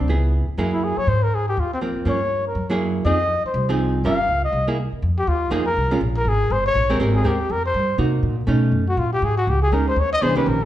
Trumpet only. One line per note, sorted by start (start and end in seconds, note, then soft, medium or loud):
0.73 0.85 E4 medium
0.84 1.00 G#4 medium
0.98 1.10 C#5 medium
1.08 1.25 C5 medium
1.23 1.36 A#4 medium
1.35 1.47 G#4 medium
1.49 1.61 G4 medium
1.60 1.72 F4 medium
1.74 1.79 C4 medium
2.09 2.44 C#5 medium
2.47 2.69 A#4 medium
3.06 3.41 D#5 medium
3.46 3.68 C5 medium
4.06 4.41 F5 medium
4.45 4.67 D#5 medium
5.18 5.30 G4 medium
5.29 5.53 F4 medium
5.52 5.65 G#4 medium
5.66 5.99 A#4 medium
6.17 6.30 A#4 medium
6.28 6.53 G#4 medium
6.52 6.66 C5 medium
6.66 6.98 C#5 loud
7.16 7.29 G#4 medium
7.27 7.53 G4 medium
7.52 7.65 A#4 medium
7.66 7.98 C5 medium
8.89 9.00 F#4 medium
8.99 9.12 F4 medium
9.13 9.26 G4 medium
9.25 9.37 G#4 medium
9.38 9.51 F#4 medium
9.50 9.62 G4 medium
9.63 9.75 G#4 loud
9.73 9.87 A#4 medium
9.88 10.01 C5 medium
10.00 10.12 C#5 medium
10.13 10.24 D#5 loud
10.23 10.36 C5 medium
10.37 10.50 B4 medium
10.48 10.65 A#4 medium